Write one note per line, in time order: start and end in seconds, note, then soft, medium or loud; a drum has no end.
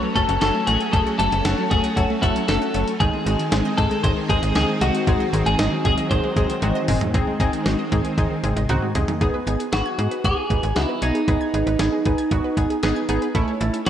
0.00 2.96 F#3 medium
0.00 0.10 F#3 medium
0.00 2.96 A3 medium
0.00 2.96 C#4 loud
0.16 0.25 F#1 loud
0.16 0.34 A3 medium
0.16 0.23 A3 medium
0.16 0.34 C#4 medium
0.16 0.34 F#4 medium
0.16 0.40 A4 loud
0.16 0.34 A4 loud
0.16 kick medium
0.16 closed hi-hat medium
0.29 0.38 F#1 loud
0.29 0.36 F#5 medium
0.29 closed hi-hat medium
0.41 0.51 F#1 loud
0.41 0.49 F#3 medium
0.41 0.60 A3 loud
0.41 0.60 C#4 medium
0.41 0.60 F#4 medium
0.41 0.65 A4 loud
0.41 0.60 A4 loud
0.41 snare loud
0.41 closed hi-hat medium
0.55 0.62 A3 medium
0.67 0.77 A1 medium
0.67 0.86 A3 medium
0.67 0.86 C#4 medium
0.67 0.86 F#4 medium
0.67 0.92 G#4 loud
0.67 0.86 A4 medium
0.67 0.75 F#5 medium
0.67 closed hi-hat medium
0.81 closed hi-hat medium
0.93 1.03 F#1 loud
0.93 1.12 A3 loud
0.93 1.00 A3 loud
0.93 1.12 C#4 medium
0.93 1.12 F#4 medium
0.93 1.12 G#4 loud
0.93 1.00 A4 loud
0.93 kick loud
0.93 closed hi-hat medium
1.07 1.13 F#5 medium
1.19 1.29 F#1 loud
1.19 1.26 F#3 medium
1.19 1.38 A3 medium
1.19 1.38 C#4 medium
1.19 1.38 F#4 medium
1.19 1.70 A4 loud
1.19 1.38 A4 medium
1.19 closed hi-hat medium
1.32 1.42 F#1 medium
1.32 1.39 A3 medium
1.32 closed hi-hat medium
1.45 1.55 F#1 loud
1.45 1.64 A3 medium
1.45 1.64 C#4 medium
1.45 1.64 F#4 medium
1.45 1.64 A4 medium
1.45 1.52 F#5 loud
1.45 snare loud
1.45 closed hi-hat medium
1.58 1.65 F#3 medium
1.71 1.81 F#1 loud
1.71 1.89 A3 medium
1.71 1.78 A3 medium
1.71 1.89 C#4 medium
1.71 1.89 F#4 medium
1.71 1.97 G#4 medium
1.71 1.89 A4 medium
1.71 kick loud
1.71 closed hi-hat medium
1.84 1.91 F#5 medium
1.84 closed hi-hat soft
1.96 2.06 F#1 loud
1.96 2.04 F#3 medium
1.96 2.15 A3 medium
1.96 2.15 C#4 medium
1.96 2.03 F#4 loud
1.96 2.15 F#4 medium
1.96 2.15 A4 medium
1.96 kick loud
1.96 closed hi-hat medium
2.10 2.17 A3 medium
2.22 2.32 F#1 loud
2.22 2.41 A3 loud
2.22 2.41 C#4 medium
2.22 2.48 E4 medium
2.22 2.41 F#4 medium
2.22 2.41 A4 loud
2.22 2.30 F#5 medium
2.22 kick medium
2.22 closed hi-hat medium
2.36 2.43 F#3 medium
2.36 closed hi-hat medium
2.48 2.58 F#1 loud
2.48 2.67 A3 loud
2.48 2.56 A3 medium
2.48 2.67 C#4 medium
2.48 2.67 F#4 medium
2.48 2.84 A4 medium
2.48 2.67 A4 loud
2.48 snare loud
2.48 closed hi-hat medium
2.62 2.68 F#5 medium
2.74 2.84 F#1 medium
2.74 2.81 F#3 medium
2.74 2.93 A3 medium
2.74 2.93 C#4 medium
2.74 2.93 F#4 medium
2.74 2.93 A4 medium
2.74 closed hi-hat medium
2.88 closed hi-hat medium
3.00 3.10 G#1 loud
3.00 7.10 D#3 medium
3.00 3.07 D#3 loud
3.00 5.05 G#3 medium
3.00 3.19 G#3 loud
3.00 7.10 C4 loud
3.00 3.19 C4 medium
3.00 3.19 D#4 medium
3.00 3.77 G#4 loud
3.00 3.19 G#4 loud
3.00 kick loud
3.00 closed hi-hat medium
3.13 3.20 G#3 medium
3.26 3.36 G#1 loud
3.26 3.45 G#3 medium
3.26 3.45 C4 medium
3.26 3.45 D#4 medium
3.26 3.45 F#4 medium
3.26 3.33 D#5 medium
3.26 closed hi-hat medium
3.39 3.46 D#3 medium
3.39 closed hi-hat medium
3.52 3.62 G#1 loud
3.52 3.71 G#3 medium
3.52 3.59 G#3 medium
3.52 3.71 C4 medium
3.52 3.71 D#4 medium
3.52 3.71 G#4 medium
3.52 snare loud
3.52 closed hi-hat medium
3.65 3.72 D#5 medium
3.78 3.88 G#2 loud
3.78 3.85 D#3 medium
3.78 3.96 G#3 medium
3.78 3.96 C4 medium
3.78 3.96 D#4 medium
3.78 3.96 G#4 medium
3.78 4.03 A4 medium
3.78 kick loud
3.78 closed hi-hat medium
3.91 3.98 G#3 medium
3.91 closed hi-hat soft
4.03 4.13 G#1 loud
4.03 4.22 G#3 medium
4.03 4.22 C4 medium
4.03 4.22 D#4 medium
4.03 4.22 G#4 medium
4.03 4.10 C5 loud
4.03 4.11 D#5 loud
4.03 kick loud
4.03 closed hi-hat medium
4.17 4.24 D#3 medium
4.29 4.39 G#1 medium
4.29 4.48 G#3 loud
4.29 4.37 G#3 medium
4.29 4.48 C4 medium
4.29 4.48 D#4 medium
4.29 4.54 G#4 medium
4.29 4.48 G#4 loud
4.29 kick medium
4.29 closed hi-hat medium
4.43 4.52 G#1 loud
4.43 4.49 D#5 medium
4.43 closed hi-hat medium
4.55 4.65 C#2 loud
4.55 4.62 D#3 medium
4.55 4.74 G#3 loud
4.55 4.74 C4 medium
4.55 4.74 D#4 medium
4.55 4.74 G#4 loud
4.55 4.63 G#4 medium
4.55 snare loud
4.55 closed hi-hat medium
4.69 4.75 G#3 medium
4.81 4.91 C2 loud
4.81 5.00 G#3 medium
4.81 5.00 C4 medium
4.81 5.00 D#4 medium
4.81 5.00 F#4 medium
4.81 5.48 F#4 medium
4.81 4.88 D#5 medium
4.81 closed hi-hat medium
4.95 closed hi-hat medium
5.07 5.17 G#1 loud
5.07 7.12 F#3 medium
5.07 5.14 G#3 loud
5.07 5.26 G#3 loud
5.07 5.26 C4 medium
5.07 5.26 D#4 medium
5.07 5.26 G#4 loud
5.07 kick loud
5.07 closed hi-hat medium
5.20 5.27 D#5 medium
5.33 5.43 G#1 loud
5.33 5.40 D#3 medium
5.33 5.52 G#3 medium
5.33 5.52 C4 medium
5.33 5.52 D#4 medium
5.33 5.52 G#4 medium
5.33 closed hi-hat medium
5.46 5.56 G#1 loud
5.46 5.53 G#3 medium
5.46 5.84 G#4 loud
5.46 closed hi-hat medium
5.59 5.68 G#1 loud
5.59 5.77 G#3 medium
5.59 5.77 C4 medium
5.59 5.77 D#4 medium
5.59 5.77 G#4 medium
5.59 5.66 D#5 loud
5.59 snare loud
5.59 closed hi-hat medium
5.72 5.79 D#3 medium
5.85 5.95 G#1 loud
5.85 5.92 G#3 medium
5.85 6.03 G#3 medium
5.85 6.03 C4 medium
5.85 6.03 D#4 medium
5.85 6.03 G#4 medium
5.85 5.92 G#4 medium
5.85 kick loud
5.85 closed hi-hat medium
5.98 6.05 D#5 medium
5.98 closed hi-hat soft
6.11 6.20 G#1 loud
6.11 6.18 D#3 medium
6.11 6.29 G#3 medium
6.11 6.29 C4 medium
6.11 6.29 D#4 medium
6.11 6.29 G#4 medium
6.11 6.84 C5 medium
6.11 kick loud
6.11 closed hi-hat medium
6.24 6.30 G#3 medium
6.36 6.46 G#1 loud
6.36 6.55 G#3 loud
6.36 6.55 C4 medium
6.36 6.55 D#4 medium
6.36 6.55 G#4 loud
6.36 6.43 D#5 medium
6.36 kick medium
6.36 closed hi-hat medium
6.49 6.56 D#3 medium
6.49 closed hi-hat medium
6.62 6.72 G#1 loud
6.62 6.81 G#3 loud
6.62 6.69 G#3 medium
6.62 6.81 C4 medium
6.62 6.81 D#4 medium
6.62 6.81 F#4 loud
6.62 closed hi-hat medium
6.62 high tom medium
6.75 6.82 D#5 medium
6.88 6.98 F#1 medium
6.88 6.95 D#3 medium
6.88 7.07 G#3 medium
6.88 7.07 C4 medium
6.88 7.07 D#4 medium
6.88 7.07 G#4 loud
6.88 mid tom loud
6.88 open hi-hat medium
7.01 closed hi-hat medium
7.01 floor tom loud
7.14 7.24 G#1 loud
7.14 9.19 D#3 medium
7.14 7.21 D#3 loud
7.14 9.19 G#3 medium
7.14 9.19 C4 medium
7.14 7.33 C4 loud
7.14 7.33 D#4 loud
7.14 7.33 G#4 loud
7.14 kick loud
7.14 closed hi-hat medium
7.27 7.34 G#3 medium
7.40 7.49 G#1 loud
7.40 7.58 C4 loud
7.40 7.58 D#4 loud
7.40 7.58 G#4 loud
7.40 7.47 D#5 medium
7.40 kick loud
7.40 closed hi-hat medium
7.53 7.60 D#3 medium
7.53 closed hi-hat medium
7.66 7.75 G#1 loud
7.66 7.73 G#3 medium
7.66 7.84 C4 medium
7.66 7.84 D#4 medium
7.66 7.84 F#4 loud
7.66 snare loud
7.66 closed hi-hat medium
7.79 7.86 D#5 medium
7.92 8.01 G#2 loud
7.92 7.99 D#3 medium
7.92 8.10 C4 medium
7.92 8.10 D#4 medium
7.92 8.10 G#4 loud
7.92 kick medium
7.92 closed hi-hat medium
8.05 8.12 G#3 medium
8.05 closed hi-hat soft
8.18 8.27 G#1 loud
8.18 8.36 C4 medium
8.18 8.36 D#4 medium
8.18 8.36 G#4 loud
8.18 8.25 D#5 medium
8.18 kick loud
8.18 closed hi-hat medium
8.18 high tom medium
8.31 8.37 D#3 medium
8.43 8.53 G#1 loud
8.43 8.50 G#3 medium
8.43 8.62 C4 medium
8.43 8.62 D#4 medium
8.43 8.62 G#4 loud
8.43 closed hi-hat medium
8.43 mid tom medium
8.56 8.66 G#1 loud
8.56 8.63 D#5 medium
8.56 closed hi-hat medium
8.56 mid tom medium
8.69 8.79 C#2 loud
8.69 8.76 D#3 medium
8.69 8.88 C4 loud
8.69 8.88 D#4 loud
8.69 8.88 F#4 loud
8.69 closed hi-hat medium
8.69 mid tom medium
8.82 8.89 G#3 medium
8.95 9.05 C2 medium
8.95 9.14 C4 medium
8.95 9.14 D#4 medium
8.95 9.14 G#4 loud
8.95 9.02 D#5 medium
8.95 closed hi-hat medium
8.95 floor tom loud
9.08 9.15 D#3 medium
9.08 closed hi-hat soft
9.08 floor tom medium
9.21 9.31 G#1 loud
9.21 9.40 B3 loud
9.21 9.40 D#4 loud
9.21 9.28 G#4 loud
9.21 9.40 G#4 loud
9.21 kick loud
9.21 closed hi-hat medium
9.34 9.41 B4 medium
9.47 9.56 G#1 loud
9.47 9.65 B3 medium
9.47 9.65 D#4 medium
9.47 9.65 G#4 loud
9.47 9.54 G#6 medium
9.47 closed hi-hat medium
9.60 9.67 G#4 medium
9.60 closed hi-hat soft
9.73 9.82 G#1 loud
9.73 9.91 B3 medium
9.73 9.91 D#4 medium
9.73 10.25 F#4 medium
9.73 9.91 G#4 medium
9.73 9.80 B4 medium
9.73 snare loud
9.73 closed hi-hat medium
9.86 9.92 G#6 medium
9.99 10.08 G#2 loud
9.99 10.17 B3 medium
9.99 10.17 D#4 medium
9.99 10.17 G#4 medium
9.99 10.05 G#4 medium
9.99 closed hi-hat medium
10.11 10.18 B4 medium
10.11 closed hi-hat soft
10.24 10.34 G#1 loud
10.24 10.43 B3 medium
10.24 10.43 D#4 medium
10.24 10.43 G#4 medium
10.24 10.76 G#4 loud
10.24 10.31 G#6 loud
10.24 kick loud
10.24 closed hi-hat medium
10.37 10.44 G#4 medium
10.50 10.60 G#1 medium
10.50 10.69 B3 medium
10.50 10.69 D#4 medium
10.50 10.69 G#4 medium
10.50 10.57 B4 medium
10.50 kick medium
10.50 closed hi-hat medium
10.63 10.73 G#1 loud
10.63 10.70 G#6 medium
10.63 closed hi-hat medium
10.76 10.86 C#2 medium
10.76 10.95 B3 loud
10.76 10.95 D#4 medium
10.76 11.03 E4 medium
10.76 10.95 F#4 loud
10.76 10.83 G#4 medium
10.76 snare loud
10.76 closed hi-hat medium
10.89 10.96 B4 medium
11.02 11.12 B1 medium
11.02 11.21 B3 loud
11.02 11.21 D#4 medium
11.02 13.05 D#4 medium
11.02 11.21 G#4 loud
11.02 11.09 G#6 medium
11.02 closed hi-hat medium
11.15 11.22 G#4 medium
11.15 closed hi-hat soft
11.28 11.37 G#1 loud
11.28 11.47 B3 loud
11.28 11.47 D#4 medium
11.28 11.47 G#4 loud
11.28 11.35 B4 loud
11.28 kick loud
11.28 closed hi-hat medium
11.41 11.48 G#6 medium
11.54 11.63 G#1 medium
11.54 11.72 B3 medium
11.54 11.72 D#4 medium
11.54 11.61 G#4 medium
11.54 11.72 G#4 medium
11.54 closed hi-hat medium
11.67 11.76 G#1 loud
11.67 11.74 B4 medium
11.67 closed hi-hat soft
11.79 11.89 G#1 loud
11.79 11.98 B3 medium
11.79 11.98 D#4 medium
11.79 11.98 G#4 loud
11.79 11.86 G#6 medium
11.79 snare loud
11.79 closed hi-hat medium
11.93 11.99 G#4 medium
12.05 12.15 G#1 loud
12.05 12.24 B3 medium
12.05 12.24 D#4 medium
12.05 12.24 G#4 loud
12.05 12.12 B4 medium
12.05 kick medium
12.05 closed hi-hat medium
12.18 12.25 G#6 medium
12.18 closed hi-hat soft
12.31 12.41 G#1 loud
12.31 12.50 B3 medium
12.31 12.50 D#4 medium
12.31 12.50 F#4 loud
12.31 12.38 G#4 medium
12.31 kick medium
12.31 closed hi-hat medium
12.44 12.51 B4 medium
12.57 12.67 G#1 loud
12.57 12.76 B3 medium
12.57 12.76 D#4 medium
12.57 12.76 G#4 loud
12.57 12.64 G#6 medium
12.57 kick medium
12.57 closed hi-hat medium
12.70 12.77 G#4 medium
12.70 closed hi-hat medium
12.83 12.93 G#1 loud
12.83 13.02 B3 loud
12.83 13.02 D#4 loud
12.83 13.02 G#4 loud
12.83 12.90 B4 medium
12.83 snare loud
12.83 closed hi-hat medium
12.96 13.03 G#6 medium
13.09 13.18 G#1 medium
13.09 13.27 B3 loud
13.09 13.27 D#4 loud
13.09 13.27 G#4 loud
13.09 13.16 G#4 medium
13.09 closed hi-hat medium
13.22 13.29 B4 medium
13.22 closed hi-hat soft
13.35 13.44 A1 loud
13.35 13.53 A3 loud
13.35 13.53 C#4 loud
13.35 13.53 E4 loud
13.35 13.42 A4 loud
13.35 kick loud
13.35 closed hi-hat medium
13.48 13.55 C#5 medium
13.61 13.70 A1 loud
13.61 13.79 A3 medium
13.61 13.79 C#4 medium
13.61 13.79 E4 loud
13.61 13.67 A6 medium
13.61 closed hi-hat medium
13.74 13.80 A4 medium
13.74 closed hi-hat soft
13.86 13.90 A3 medium
13.86 13.90 E4 medium
13.86 13.90 F#4 medium
13.86 13.90 C#5 medium
13.86 snare loud
13.86 closed hi-hat medium